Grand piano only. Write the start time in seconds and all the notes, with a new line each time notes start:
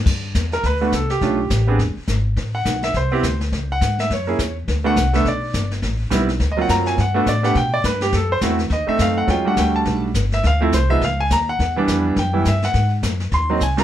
0.53 A#4
0.66 B4
0.81 A3 B3 D4 F#4
0.94 A4
1.11 G4
1.22 A3 C#4 D4 F4
1.67 B3 C4 D4 G#4
2.55 F#5
2.84 E5
2.97 C5
3.12 B3 C4 E4 G4
3.72 F#5
4.00 E5
4.13 C#5
4.27 A#3 C#4 E4 G#4
4.84 A3 B3 D4 F#4 F#5
5.13 A3 B3 D4 A4 E5
5.28 D5
6.10 G3 B3 C4 E4
6.52 D#5
6.57 F#3 A#3 C4 F4
6.62 F#5
6.70 A#5
6.87 G#5
7.00 F#5
7.14 A3 B3 D4 F#4 A4
7.29 D5
7.43 A3 B3 D4 G4 F#5
7.57 G5
7.74 D5
7.85 B4
8.02 G4
8.15 A4
8.32 C5
8.42 A3 C4 E4 F#4
8.73 D#5
8.87 A3 C4 D#4 A4 E5
9.02 F5
9.18 F#5
9.27 F#3 G#3 C#4 F4 G5
9.45 G3 A3 D4 F#4 F#5
9.59 G5
9.76 A5
10.34 E5
10.47 F5
10.61 F3 A3 C4 E4 A4
10.74 C5
10.89 F3 G#3 B3 D#4 E5
11.05 F5
11.20 G#5
11.33 A#5
11.49 F#5
11.76 E3 G3 B3 D4
12.19 G5
12.33 E3 G3 B3 E4
12.48 E5
12.65 F#5
13.34 C6
13.50 F#3 A#3 C4 D#4
13.63 G#5
13.77 G3 C4 D4 F4 A#5